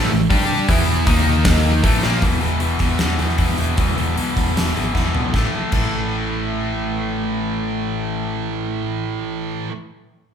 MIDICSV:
0, 0, Header, 1, 5, 480
1, 0, Start_track
1, 0, Tempo, 385604
1, 850, Time_signature, 4, 2, 24, 8
1, 4695, Tempo, 390371
1, 12775, End_track
2, 0, Start_track
2, 0, Title_t, "Overdriven electric guitar"
2, 0, Program_c, 0, 29
2, 0, Note_on_c, 0, 52, 107
2, 0, Note_on_c, 0, 57, 104
2, 129, Note_off_c, 0, 52, 0
2, 131, Note_on_c, 0, 45, 60
2, 134, Note_off_c, 0, 57, 0
2, 142, Note_on_c, 0, 52, 75
2, 324, Note_off_c, 0, 45, 0
2, 329, Note_off_c, 0, 52, 0
2, 367, Note_on_c, 0, 55, 91
2, 377, Note_on_c, 0, 62, 88
2, 384, Note_on_c, 0, 67, 106
2, 837, Note_on_c, 0, 52, 104
2, 840, Note_off_c, 0, 55, 0
2, 845, Note_off_c, 0, 62, 0
2, 849, Note_off_c, 0, 67, 0
2, 850, Note_on_c, 0, 59, 95
2, 854, Note_on_c, 0, 64, 108
2, 1312, Note_off_c, 0, 52, 0
2, 1315, Note_off_c, 0, 59, 0
2, 1317, Note_on_c, 0, 51, 94
2, 1320, Note_on_c, 0, 58, 101
2, 1323, Note_off_c, 0, 64, 0
2, 1336, Note_on_c, 0, 63, 102
2, 2272, Note_off_c, 0, 51, 0
2, 2275, Note_off_c, 0, 58, 0
2, 2277, Note_on_c, 0, 45, 82
2, 2283, Note_off_c, 0, 63, 0
2, 2286, Note_on_c, 0, 52, 93
2, 2298, Note_on_c, 0, 57, 104
2, 2515, Note_off_c, 0, 45, 0
2, 2519, Note_off_c, 0, 52, 0
2, 2521, Note_on_c, 0, 46, 86
2, 2525, Note_off_c, 0, 57, 0
2, 2532, Note_on_c, 0, 53, 91
2, 2540, Note_on_c, 0, 58, 103
2, 2757, Note_off_c, 0, 46, 0
2, 2760, Note_on_c, 0, 40, 88
2, 2762, Note_off_c, 0, 53, 0
2, 2766, Note_off_c, 0, 58, 0
2, 2767, Note_on_c, 0, 47, 93
2, 2780, Note_on_c, 0, 52, 104
2, 2993, Note_off_c, 0, 40, 0
2, 2996, Note_off_c, 0, 47, 0
2, 2998, Note_on_c, 0, 40, 82
2, 3010, Note_off_c, 0, 52, 0
2, 3011, Note_on_c, 0, 47, 82
2, 3015, Note_on_c, 0, 52, 85
2, 3228, Note_off_c, 0, 47, 0
2, 3232, Note_off_c, 0, 40, 0
2, 3237, Note_on_c, 0, 40, 76
2, 3243, Note_on_c, 0, 47, 83
2, 3251, Note_off_c, 0, 52, 0
2, 3256, Note_on_c, 0, 52, 83
2, 3472, Note_off_c, 0, 47, 0
2, 3476, Note_off_c, 0, 40, 0
2, 3481, Note_on_c, 0, 40, 87
2, 3487, Note_off_c, 0, 52, 0
2, 3487, Note_on_c, 0, 47, 83
2, 3492, Note_on_c, 0, 52, 94
2, 3702, Note_off_c, 0, 40, 0
2, 3710, Note_off_c, 0, 47, 0
2, 3717, Note_on_c, 0, 40, 74
2, 3725, Note_on_c, 0, 47, 76
2, 3731, Note_off_c, 0, 52, 0
2, 3736, Note_on_c, 0, 52, 86
2, 3946, Note_off_c, 0, 40, 0
2, 3954, Note_off_c, 0, 47, 0
2, 3960, Note_on_c, 0, 40, 71
2, 3967, Note_off_c, 0, 52, 0
2, 3969, Note_on_c, 0, 47, 76
2, 3972, Note_on_c, 0, 52, 84
2, 4187, Note_off_c, 0, 40, 0
2, 4201, Note_off_c, 0, 47, 0
2, 4202, Note_on_c, 0, 40, 73
2, 4215, Note_off_c, 0, 52, 0
2, 4216, Note_on_c, 0, 47, 81
2, 4220, Note_on_c, 0, 52, 94
2, 4437, Note_off_c, 0, 40, 0
2, 4449, Note_off_c, 0, 47, 0
2, 4452, Note_on_c, 0, 40, 73
2, 4461, Note_off_c, 0, 52, 0
2, 4464, Note_on_c, 0, 47, 72
2, 4466, Note_on_c, 0, 52, 83
2, 4672, Note_off_c, 0, 40, 0
2, 4684, Note_off_c, 0, 47, 0
2, 4687, Note_on_c, 0, 40, 79
2, 4693, Note_off_c, 0, 52, 0
2, 4699, Note_on_c, 0, 47, 84
2, 4708, Note_on_c, 0, 52, 92
2, 4913, Note_off_c, 0, 40, 0
2, 4922, Note_off_c, 0, 47, 0
2, 4928, Note_on_c, 0, 40, 75
2, 4934, Note_off_c, 0, 52, 0
2, 4937, Note_on_c, 0, 47, 76
2, 4949, Note_on_c, 0, 52, 81
2, 5152, Note_off_c, 0, 40, 0
2, 5162, Note_off_c, 0, 47, 0
2, 5167, Note_on_c, 0, 40, 72
2, 5168, Note_off_c, 0, 52, 0
2, 5177, Note_on_c, 0, 47, 75
2, 5183, Note_on_c, 0, 52, 75
2, 5396, Note_off_c, 0, 40, 0
2, 5406, Note_off_c, 0, 47, 0
2, 5411, Note_on_c, 0, 40, 82
2, 5412, Note_off_c, 0, 52, 0
2, 5421, Note_on_c, 0, 47, 89
2, 5426, Note_on_c, 0, 52, 81
2, 5638, Note_off_c, 0, 40, 0
2, 5649, Note_off_c, 0, 47, 0
2, 5653, Note_off_c, 0, 52, 0
2, 5653, Note_on_c, 0, 40, 71
2, 5664, Note_on_c, 0, 47, 70
2, 5668, Note_on_c, 0, 52, 74
2, 5871, Note_off_c, 0, 40, 0
2, 5886, Note_off_c, 0, 47, 0
2, 5886, Note_on_c, 0, 40, 74
2, 5891, Note_off_c, 0, 52, 0
2, 5901, Note_on_c, 0, 47, 72
2, 5906, Note_on_c, 0, 52, 76
2, 6112, Note_off_c, 0, 40, 0
2, 6123, Note_off_c, 0, 47, 0
2, 6127, Note_off_c, 0, 52, 0
2, 6127, Note_on_c, 0, 40, 71
2, 6138, Note_on_c, 0, 47, 72
2, 6142, Note_on_c, 0, 52, 80
2, 6352, Note_off_c, 0, 40, 0
2, 6356, Note_off_c, 0, 47, 0
2, 6366, Note_off_c, 0, 52, 0
2, 6366, Note_on_c, 0, 40, 73
2, 6370, Note_on_c, 0, 47, 73
2, 6381, Note_on_c, 0, 52, 66
2, 6584, Note_off_c, 0, 47, 0
2, 6589, Note_on_c, 0, 45, 78
2, 6594, Note_off_c, 0, 40, 0
2, 6601, Note_off_c, 0, 52, 0
2, 6618, Note_on_c, 0, 52, 80
2, 6643, Note_on_c, 0, 57, 83
2, 7062, Note_off_c, 0, 45, 0
2, 7067, Note_on_c, 0, 45, 70
2, 7091, Note_off_c, 0, 52, 0
2, 7096, Note_on_c, 0, 52, 79
2, 7109, Note_off_c, 0, 57, 0
2, 7114, Note_on_c, 0, 57, 82
2, 11948, Note_off_c, 0, 45, 0
2, 11977, Note_off_c, 0, 52, 0
2, 11995, Note_off_c, 0, 57, 0
2, 12775, End_track
3, 0, Start_track
3, 0, Title_t, "Overdriven electric guitar"
3, 0, Program_c, 1, 29
3, 0, Note_on_c, 1, 45, 94
3, 125, Note_off_c, 1, 45, 0
3, 12775, End_track
4, 0, Start_track
4, 0, Title_t, "Fingered electric bass"
4, 0, Program_c, 2, 33
4, 151, Note_on_c, 2, 33, 85
4, 365, Note_off_c, 2, 33, 0
4, 385, Note_on_c, 2, 43, 90
4, 823, Note_off_c, 2, 43, 0
4, 856, Note_on_c, 2, 40, 95
4, 1298, Note_off_c, 2, 40, 0
4, 1335, Note_on_c, 2, 39, 94
4, 2240, Note_off_c, 2, 39, 0
4, 2293, Note_on_c, 2, 33, 92
4, 2514, Note_off_c, 2, 33, 0
4, 2539, Note_on_c, 2, 34, 95
4, 2757, Note_off_c, 2, 34, 0
4, 2768, Note_on_c, 2, 28, 83
4, 2968, Note_off_c, 2, 28, 0
4, 3002, Note_on_c, 2, 28, 78
4, 3205, Note_off_c, 2, 28, 0
4, 3244, Note_on_c, 2, 28, 81
4, 3447, Note_off_c, 2, 28, 0
4, 3488, Note_on_c, 2, 28, 80
4, 3689, Note_off_c, 2, 28, 0
4, 3737, Note_on_c, 2, 40, 77
4, 3935, Note_off_c, 2, 40, 0
4, 3986, Note_on_c, 2, 40, 78
4, 4181, Note_off_c, 2, 40, 0
4, 4217, Note_on_c, 2, 28, 77
4, 4417, Note_off_c, 2, 28, 0
4, 4463, Note_on_c, 2, 28, 80
4, 4661, Note_off_c, 2, 28, 0
4, 4711, Note_on_c, 2, 28, 87
4, 4904, Note_off_c, 2, 28, 0
4, 4949, Note_on_c, 2, 28, 81
4, 5143, Note_off_c, 2, 28, 0
4, 5185, Note_on_c, 2, 35, 78
4, 5380, Note_off_c, 2, 35, 0
4, 5434, Note_on_c, 2, 40, 80
4, 5625, Note_off_c, 2, 40, 0
4, 5670, Note_on_c, 2, 28, 77
4, 5863, Note_off_c, 2, 28, 0
4, 5904, Note_on_c, 2, 32, 73
4, 6099, Note_off_c, 2, 32, 0
4, 6145, Note_on_c, 2, 28, 71
4, 6340, Note_off_c, 2, 28, 0
4, 6380, Note_on_c, 2, 35, 77
4, 6576, Note_off_c, 2, 35, 0
4, 6625, Note_on_c, 2, 33, 77
4, 6753, Note_off_c, 2, 33, 0
4, 7102, Note_on_c, 2, 33, 71
4, 11934, Note_off_c, 2, 33, 0
4, 12775, End_track
5, 0, Start_track
5, 0, Title_t, "Drums"
5, 379, Note_on_c, 9, 36, 103
5, 383, Note_on_c, 9, 46, 65
5, 504, Note_off_c, 9, 36, 0
5, 507, Note_off_c, 9, 46, 0
5, 854, Note_on_c, 9, 36, 108
5, 854, Note_on_c, 9, 46, 69
5, 978, Note_off_c, 9, 46, 0
5, 979, Note_off_c, 9, 36, 0
5, 1328, Note_on_c, 9, 46, 66
5, 1331, Note_on_c, 9, 36, 112
5, 1453, Note_off_c, 9, 46, 0
5, 1456, Note_off_c, 9, 36, 0
5, 1802, Note_on_c, 9, 46, 77
5, 1806, Note_on_c, 9, 38, 127
5, 1807, Note_on_c, 9, 36, 117
5, 1926, Note_off_c, 9, 46, 0
5, 1930, Note_off_c, 9, 38, 0
5, 1932, Note_off_c, 9, 36, 0
5, 2287, Note_on_c, 9, 36, 109
5, 2287, Note_on_c, 9, 46, 65
5, 2411, Note_off_c, 9, 36, 0
5, 2411, Note_off_c, 9, 46, 0
5, 2528, Note_on_c, 9, 38, 74
5, 2653, Note_off_c, 9, 38, 0
5, 2758, Note_on_c, 9, 46, 55
5, 2767, Note_on_c, 9, 36, 98
5, 2883, Note_off_c, 9, 46, 0
5, 2891, Note_off_c, 9, 36, 0
5, 3001, Note_on_c, 9, 46, 45
5, 3126, Note_off_c, 9, 46, 0
5, 3237, Note_on_c, 9, 46, 58
5, 3362, Note_off_c, 9, 46, 0
5, 3474, Note_on_c, 9, 46, 45
5, 3486, Note_on_c, 9, 36, 74
5, 3598, Note_off_c, 9, 46, 0
5, 3610, Note_off_c, 9, 36, 0
5, 3718, Note_on_c, 9, 46, 63
5, 3722, Note_on_c, 9, 38, 100
5, 3843, Note_off_c, 9, 46, 0
5, 3847, Note_off_c, 9, 38, 0
5, 3969, Note_on_c, 9, 46, 47
5, 4092, Note_on_c, 9, 38, 29
5, 4094, Note_off_c, 9, 46, 0
5, 4208, Note_on_c, 9, 46, 59
5, 4215, Note_on_c, 9, 36, 77
5, 4217, Note_off_c, 9, 38, 0
5, 4332, Note_off_c, 9, 46, 0
5, 4339, Note_off_c, 9, 36, 0
5, 4454, Note_on_c, 9, 46, 49
5, 4578, Note_off_c, 9, 46, 0
5, 4698, Note_on_c, 9, 46, 65
5, 4705, Note_on_c, 9, 36, 100
5, 4821, Note_off_c, 9, 46, 0
5, 4828, Note_off_c, 9, 36, 0
5, 4949, Note_on_c, 9, 46, 47
5, 5072, Note_off_c, 9, 46, 0
5, 5190, Note_on_c, 9, 46, 66
5, 5313, Note_off_c, 9, 46, 0
5, 5427, Note_on_c, 9, 36, 74
5, 5433, Note_on_c, 9, 46, 46
5, 5550, Note_off_c, 9, 36, 0
5, 5556, Note_off_c, 9, 46, 0
5, 5676, Note_on_c, 9, 46, 65
5, 5679, Note_on_c, 9, 38, 97
5, 5799, Note_off_c, 9, 46, 0
5, 5802, Note_off_c, 9, 38, 0
5, 5915, Note_on_c, 9, 46, 45
5, 6038, Note_off_c, 9, 46, 0
5, 6143, Note_on_c, 9, 36, 70
5, 6150, Note_on_c, 9, 38, 53
5, 6266, Note_off_c, 9, 36, 0
5, 6273, Note_off_c, 9, 38, 0
5, 6385, Note_on_c, 9, 43, 73
5, 6508, Note_off_c, 9, 43, 0
5, 6621, Note_on_c, 9, 36, 86
5, 6631, Note_on_c, 9, 38, 70
5, 6744, Note_off_c, 9, 36, 0
5, 6754, Note_off_c, 9, 38, 0
5, 7089, Note_on_c, 9, 49, 70
5, 7097, Note_on_c, 9, 36, 83
5, 7212, Note_off_c, 9, 49, 0
5, 7220, Note_off_c, 9, 36, 0
5, 12775, End_track
0, 0, End_of_file